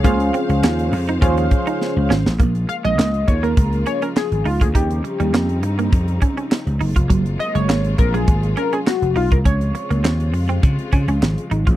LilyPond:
<<
  \new Staff \with { instrumentName = "Analog polysynth" } { \time 4/4 \key bes \minor \tempo 4 = 102 << { des''16 r2. r8. | r8 f''16 ees''8. des''16 bes'8. des''16 bes'16 aes'8 f'16 aes'16 | g'4. r2 r8 | r8 ees''16 des''8. bes'16 aes'8. bes'16 aes'16 ges'8 f'16 bes'16 |
des''4. r2 r8 | } \\ { <des' f' aes' c'' f''>4. r8 <des' f' aes' c'' f''>4. r8 | r1 | r1 | r1 |
r1 | } >> }
  \new Staff \with { instrumentName = "Clean electric guitar" } { \time 4/4 \key bes \minor bes16 r16 c'16 r16 des'16 r8 ees'16 f'16 r8 ees'16 r8 des'16 r16 | bes16 r8 aes16 bes16 r8 bes16 r8 des'16 des'16 r8 ees'16 f'16 | ees'16 r8 g16 bes16 r8 bes16 r8 des'16 des'16 r8 ees'16 f'16 | ges16 r8 aes16 bes16 r8 bes16 r8 des'16 des'16 r8 ees'16 f'16 |
des'16 r8 bes16 c'16 r8 c'16 r8 des'16 des'16 r8 ees'16 f'16 | }
  \new Staff \with { instrumentName = "String section" } { \clef bass \time 4/4 \key bes \minor << { <aes c'' f''>1 | <aes bes f'>1 | <g c' ees'>2.~ <g c' ees'>8 <aes bes f'>8~ | <aes bes f'>1 |
<c aes f'>1 | } \\ { <des f>1 | <des f>1~ | <des f>2.~ <des f>8 <c ges>8~ | <c ges>1 |
<des f>1 | } >> }
  \new Staff \with { instrumentName = "Slap bass" } { \clef bass \time 4/4 \key bes \minor des,8 r16 des,16 ees,8 f,8 ees,8 r8. des,16 aes,,16 a,,16 | bes,,8 r16 bes,,16 des,8 ees,8 des,8 r8. aes,,16 des,16 d,16 | ees,8 r16 ees,16 f,8 g,8 f,8 r8. des,16 ges,,16 f,,16 | ges,,8 r16 ges,,16 aes,,8 bes,,8 aes,,8 r8. f,,16 ces,16 c,16 |
des,8 r16 des,16 ees,8 f,8 des16 r16 des16 des,16 aes,,16 r16 aes,,16 a,,16 | }
  \new DrumStaff \with { instrumentName = "Drums" } \drummode { \time 4/4 <hh bd>16 hh16 hh16 hh16 <hc sn>16 hh16 hho16 hh16 <hh bd>16 hh16 <hh bd>16 hh16 sn8 sn16 sn16 | <hh bd>16 hh16 hh16 hh16 <hc sn>16 hh16 <hh bd>16 hh16 <hh bd>16 hh16 hh16 hh16 <hc sn>16 hh16 hho16 <hh bd>16 | <hh bd>16 hh16 hh16 hh16 <hc sn>16 hh16 hh16 hh16 <hh bd>16 hh16 <hh bd>16 hh16 <hc sn>16 hh16 hho16 <hh bd>16 | <hh bd>16 hh16 hh16 hh16 <hc sn>16 hh16 <hh bd>16 hh16 <hh bd>16 hh16 hh16 hh16 <hc sn>16 hh16 hho16 <hh bd>16 |
<hh bd>16 hh16 hh16 hh16 <hc sn>16 hh16 hho16 hh16 <hh bd>16 hh16 <hh bd>16 hh16 <hc sn>16 hh16 hh16 <hh bd>16 | }
>>